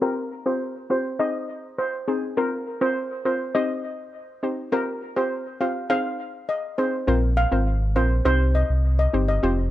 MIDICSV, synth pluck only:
0, 0, Header, 1, 2, 480
1, 0, Start_track
1, 0, Key_signature, -4, "minor"
1, 0, Tempo, 588235
1, 16, Time_signature, 4, 2, 24, 8
1, 7921, End_track
2, 0, Start_track
2, 0, Title_t, "Synth pluck"
2, 0, Program_c, 0, 84
2, 12, Note_on_c, 0, 60, 89
2, 14, Note_on_c, 0, 65, 80
2, 16, Note_on_c, 0, 67, 85
2, 17, Note_on_c, 0, 72, 100
2, 115, Note_off_c, 0, 60, 0
2, 116, Note_off_c, 0, 65, 0
2, 117, Note_off_c, 0, 67, 0
2, 118, Note_off_c, 0, 72, 0
2, 373, Note_on_c, 0, 60, 76
2, 374, Note_on_c, 0, 65, 67
2, 375, Note_on_c, 0, 67, 69
2, 377, Note_on_c, 0, 72, 79
2, 475, Note_off_c, 0, 60, 0
2, 476, Note_off_c, 0, 65, 0
2, 477, Note_off_c, 0, 67, 0
2, 478, Note_off_c, 0, 72, 0
2, 733, Note_on_c, 0, 60, 73
2, 734, Note_on_c, 0, 65, 67
2, 736, Note_on_c, 0, 67, 68
2, 738, Note_on_c, 0, 72, 83
2, 835, Note_off_c, 0, 60, 0
2, 836, Note_off_c, 0, 65, 0
2, 837, Note_off_c, 0, 67, 0
2, 838, Note_off_c, 0, 72, 0
2, 972, Note_on_c, 0, 60, 88
2, 974, Note_on_c, 0, 63, 86
2, 976, Note_on_c, 0, 68, 82
2, 977, Note_on_c, 0, 72, 100
2, 1636, Note_off_c, 0, 60, 0
2, 1637, Note_off_c, 0, 63, 0
2, 1638, Note_off_c, 0, 68, 0
2, 1639, Note_off_c, 0, 72, 0
2, 1694, Note_on_c, 0, 60, 70
2, 1695, Note_on_c, 0, 63, 66
2, 1697, Note_on_c, 0, 68, 68
2, 1699, Note_on_c, 0, 72, 85
2, 1915, Note_off_c, 0, 60, 0
2, 1916, Note_off_c, 0, 63, 0
2, 1917, Note_off_c, 0, 68, 0
2, 1918, Note_off_c, 0, 72, 0
2, 1934, Note_on_c, 0, 60, 88
2, 1935, Note_on_c, 0, 65, 82
2, 1937, Note_on_c, 0, 70, 85
2, 1939, Note_on_c, 0, 72, 100
2, 2036, Note_off_c, 0, 60, 0
2, 2036, Note_off_c, 0, 65, 0
2, 2037, Note_off_c, 0, 70, 0
2, 2038, Note_off_c, 0, 72, 0
2, 2293, Note_on_c, 0, 60, 77
2, 2295, Note_on_c, 0, 65, 68
2, 2297, Note_on_c, 0, 70, 68
2, 2299, Note_on_c, 0, 72, 84
2, 2396, Note_off_c, 0, 60, 0
2, 2397, Note_off_c, 0, 65, 0
2, 2397, Note_off_c, 0, 70, 0
2, 2398, Note_off_c, 0, 72, 0
2, 2654, Note_on_c, 0, 60, 71
2, 2656, Note_on_c, 0, 65, 71
2, 2657, Note_on_c, 0, 70, 70
2, 2659, Note_on_c, 0, 72, 83
2, 2756, Note_off_c, 0, 60, 0
2, 2757, Note_off_c, 0, 65, 0
2, 2757, Note_off_c, 0, 70, 0
2, 2758, Note_off_c, 0, 72, 0
2, 2894, Note_on_c, 0, 60, 91
2, 2895, Note_on_c, 0, 63, 86
2, 2897, Note_on_c, 0, 67, 82
2, 2899, Note_on_c, 0, 72, 103
2, 3557, Note_off_c, 0, 60, 0
2, 3558, Note_off_c, 0, 63, 0
2, 3559, Note_off_c, 0, 67, 0
2, 3559, Note_off_c, 0, 72, 0
2, 3613, Note_on_c, 0, 60, 75
2, 3614, Note_on_c, 0, 63, 70
2, 3616, Note_on_c, 0, 67, 66
2, 3617, Note_on_c, 0, 72, 81
2, 3835, Note_off_c, 0, 60, 0
2, 3836, Note_off_c, 0, 63, 0
2, 3837, Note_off_c, 0, 67, 0
2, 3837, Note_off_c, 0, 72, 0
2, 3852, Note_on_c, 0, 60, 93
2, 3854, Note_on_c, 0, 65, 81
2, 3855, Note_on_c, 0, 67, 82
2, 3857, Note_on_c, 0, 72, 101
2, 3955, Note_off_c, 0, 60, 0
2, 3956, Note_off_c, 0, 65, 0
2, 3956, Note_off_c, 0, 67, 0
2, 3957, Note_off_c, 0, 72, 0
2, 4212, Note_on_c, 0, 60, 76
2, 4214, Note_on_c, 0, 65, 68
2, 4216, Note_on_c, 0, 67, 68
2, 4218, Note_on_c, 0, 72, 80
2, 4315, Note_off_c, 0, 60, 0
2, 4316, Note_off_c, 0, 65, 0
2, 4317, Note_off_c, 0, 67, 0
2, 4318, Note_off_c, 0, 72, 0
2, 4573, Note_on_c, 0, 60, 74
2, 4574, Note_on_c, 0, 65, 72
2, 4576, Note_on_c, 0, 67, 67
2, 4578, Note_on_c, 0, 72, 87
2, 4675, Note_off_c, 0, 60, 0
2, 4676, Note_off_c, 0, 65, 0
2, 4677, Note_off_c, 0, 67, 0
2, 4678, Note_off_c, 0, 72, 0
2, 4812, Note_on_c, 0, 60, 91
2, 4814, Note_on_c, 0, 63, 84
2, 4815, Note_on_c, 0, 68, 84
2, 4817, Note_on_c, 0, 72, 102
2, 5476, Note_off_c, 0, 60, 0
2, 5477, Note_off_c, 0, 63, 0
2, 5478, Note_off_c, 0, 68, 0
2, 5478, Note_off_c, 0, 72, 0
2, 5532, Note_on_c, 0, 60, 75
2, 5533, Note_on_c, 0, 63, 68
2, 5535, Note_on_c, 0, 68, 66
2, 5537, Note_on_c, 0, 72, 83
2, 5755, Note_off_c, 0, 60, 0
2, 5755, Note_off_c, 0, 63, 0
2, 5756, Note_off_c, 0, 68, 0
2, 5757, Note_off_c, 0, 72, 0
2, 5772, Note_on_c, 0, 60, 94
2, 5774, Note_on_c, 0, 65, 84
2, 5775, Note_on_c, 0, 70, 83
2, 5777, Note_on_c, 0, 72, 106
2, 5875, Note_off_c, 0, 60, 0
2, 5876, Note_off_c, 0, 65, 0
2, 5876, Note_off_c, 0, 70, 0
2, 5877, Note_off_c, 0, 72, 0
2, 6133, Note_on_c, 0, 60, 80
2, 6133, Note_on_c, 0, 65, 69
2, 6135, Note_on_c, 0, 70, 72
2, 6137, Note_on_c, 0, 72, 84
2, 6235, Note_off_c, 0, 60, 0
2, 6236, Note_off_c, 0, 65, 0
2, 6237, Note_off_c, 0, 70, 0
2, 6238, Note_off_c, 0, 72, 0
2, 6493, Note_on_c, 0, 60, 78
2, 6494, Note_on_c, 0, 65, 71
2, 6496, Note_on_c, 0, 70, 70
2, 6497, Note_on_c, 0, 72, 86
2, 6595, Note_off_c, 0, 60, 0
2, 6596, Note_off_c, 0, 65, 0
2, 6597, Note_off_c, 0, 70, 0
2, 6598, Note_off_c, 0, 72, 0
2, 6732, Note_on_c, 0, 60, 98
2, 6734, Note_on_c, 0, 63, 86
2, 6736, Note_on_c, 0, 67, 88
2, 6738, Note_on_c, 0, 72, 103
2, 7396, Note_off_c, 0, 60, 0
2, 7397, Note_off_c, 0, 63, 0
2, 7398, Note_off_c, 0, 67, 0
2, 7399, Note_off_c, 0, 72, 0
2, 7453, Note_on_c, 0, 60, 75
2, 7454, Note_on_c, 0, 63, 68
2, 7456, Note_on_c, 0, 67, 68
2, 7458, Note_on_c, 0, 72, 85
2, 7675, Note_off_c, 0, 60, 0
2, 7676, Note_off_c, 0, 63, 0
2, 7677, Note_off_c, 0, 67, 0
2, 7677, Note_off_c, 0, 72, 0
2, 7693, Note_on_c, 0, 60, 92
2, 7696, Note_on_c, 0, 65, 86
2, 7697, Note_on_c, 0, 67, 85
2, 7699, Note_on_c, 0, 72, 99
2, 7795, Note_off_c, 0, 60, 0
2, 7797, Note_off_c, 0, 65, 0
2, 7797, Note_off_c, 0, 67, 0
2, 7798, Note_off_c, 0, 72, 0
2, 7921, End_track
0, 0, End_of_file